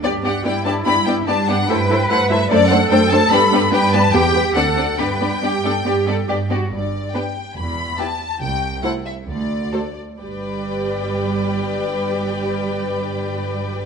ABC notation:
X:1
M:4/4
L:1/8
Q:1/4=141
K:G
V:1 name="Violin section"
d f g a b g a f | g2 f e d f g a | b2 g a g2 f2 | g6- g z |
d2 g2 b2 a2 | g2 f e d3 z | g8- | g8 |]
V:2 name="Violin section"
[Gd] [Gd] [Gd] [Gd] [Gd] [Gd] [Gd] [Gd] | [Ac] [Ac] [Ac] [Ac] [Ac] [Ac] [Ac] [Ac] | [GB] [GB] [GB] [GB] [GB] [GB] [Ad] [Ad] | [Gd] [Gd] [Gd] [Gd] [Gd] [Gd] [Gd] [Gd] |
z2 [GB]2 z2 [GB]2 | z2 [Ac]2 z2 [Ac]2 | [Bd]8- | [Bd]8 |]
V:3 name="Cello section"
G2 E4 D2 | B4 A4- | A2 B2 G2 A2 | B2 G A G A G F |
G,,2 z2 E,,2 z2 | C,,2 z2 D,,2 z2 | G,,8- | G,,8 |]
V:4 name="Viola section"
[B,D] [B,D] [B,D] [B,D] [B,D] [B,D] [B,D] [B,D] | [A,E] [A,E] [A,E] [A,E] [A,D] [A,D] [A,D] [A,D] | [B,D] [B,D] [B,D] [B,D] [B,G] [B,G] [CD] [CD] | [B,D] [B,D] [B,D] [B,D] [B,D] [B,D] [B,D] [B,D] |
z2 [B,D]2 z2 [B,E]2 | z2 [A,E]2 z2 [A,F]2 | [G,G]8- | [G,G]8 |]
V:5 name="Double bass section" clef=bass
G,,2 G,,2 G,,2 G,,2 | G,,2 G,,2 F,,2 F,,2 | G,,2 G,,2 E,,2 D,,2 | G,,2 G,,2 G,,2 G,,2 |
G,,,2 z2 E,,,2 z2 | C,,2 z2 D,,2 z2 | G,,,8- | G,,,8 |]